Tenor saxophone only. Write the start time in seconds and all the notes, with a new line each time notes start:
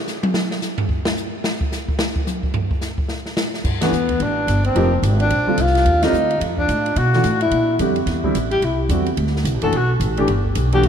3.83 B3
4.22 D4
4.65 C4
5.21 D4
5.61 F4
6.03 D#4
6.59 D4
6.98 F#4
7.42 E4
8.51 G4
8.64 E4
9.63 A4
9.76 F#4
10.74 G4